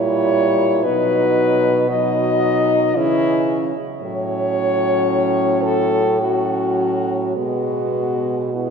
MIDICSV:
0, 0, Header, 1, 5, 480
1, 0, Start_track
1, 0, Tempo, 1058201
1, 387, Time_signature, 3, 2, 24, 8
1, 2308, Tempo, 1115242
1, 2788, Tempo, 1165049
1, 3817, End_track
2, 0, Start_track
2, 0, Title_t, "French horn"
2, 0, Program_c, 0, 60
2, 0, Note_on_c, 0, 73, 127
2, 380, Note_on_c, 0, 71, 122
2, 386, Note_off_c, 0, 73, 0
2, 860, Note_on_c, 0, 75, 124
2, 867, Note_off_c, 0, 71, 0
2, 1346, Note_on_c, 0, 64, 127
2, 1352, Note_off_c, 0, 75, 0
2, 1705, Note_off_c, 0, 64, 0
2, 1826, Note_on_c, 0, 73, 127
2, 2545, Note_on_c, 0, 69, 116
2, 2551, Note_off_c, 0, 73, 0
2, 2789, Note_on_c, 0, 66, 102
2, 2795, Note_off_c, 0, 69, 0
2, 3264, Note_off_c, 0, 66, 0
2, 3267, Note_on_c, 0, 66, 100
2, 3754, Note_on_c, 0, 64, 74
2, 3760, Note_off_c, 0, 66, 0
2, 3817, Note_off_c, 0, 64, 0
2, 3817, End_track
3, 0, Start_track
3, 0, Title_t, "French horn"
3, 0, Program_c, 1, 60
3, 0, Note_on_c, 1, 64, 89
3, 381, Note_on_c, 1, 63, 85
3, 388, Note_off_c, 1, 64, 0
3, 858, Note_off_c, 1, 63, 0
3, 861, Note_on_c, 1, 63, 88
3, 1340, Note_on_c, 1, 61, 92
3, 1347, Note_off_c, 1, 63, 0
3, 1702, Note_off_c, 1, 61, 0
3, 1827, Note_on_c, 1, 61, 89
3, 2770, Note_off_c, 1, 61, 0
3, 2791, Note_on_c, 1, 61, 77
3, 3264, Note_on_c, 1, 59, 69
3, 3270, Note_off_c, 1, 61, 0
3, 3748, Note_off_c, 1, 59, 0
3, 3753, Note_on_c, 1, 59, 74
3, 3817, Note_off_c, 1, 59, 0
3, 3817, End_track
4, 0, Start_track
4, 0, Title_t, "French horn"
4, 0, Program_c, 2, 60
4, 0, Note_on_c, 2, 55, 84
4, 381, Note_off_c, 2, 55, 0
4, 383, Note_on_c, 2, 54, 79
4, 855, Note_off_c, 2, 54, 0
4, 863, Note_on_c, 2, 54, 88
4, 1345, Note_on_c, 2, 52, 83
4, 1352, Note_off_c, 2, 54, 0
4, 1705, Note_off_c, 2, 52, 0
4, 1827, Note_on_c, 2, 54, 92
4, 2770, Note_off_c, 2, 54, 0
4, 2791, Note_on_c, 2, 54, 74
4, 3269, Note_on_c, 2, 56, 68
4, 3275, Note_off_c, 2, 54, 0
4, 3748, Note_off_c, 2, 56, 0
4, 3751, Note_on_c, 2, 56, 67
4, 3817, Note_off_c, 2, 56, 0
4, 3817, End_track
5, 0, Start_track
5, 0, Title_t, "French horn"
5, 0, Program_c, 3, 60
5, 0, Note_on_c, 3, 46, 81
5, 384, Note_on_c, 3, 47, 88
5, 391, Note_off_c, 3, 46, 0
5, 1341, Note_off_c, 3, 47, 0
5, 1343, Note_on_c, 3, 49, 85
5, 1697, Note_off_c, 3, 49, 0
5, 1825, Note_on_c, 3, 45, 90
5, 3248, Note_off_c, 3, 45, 0
5, 3267, Note_on_c, 3, 47, 72
5, 3817, Note_off_c, 3, 47, 0
5, 3817, End_track
0, 0, End_of_file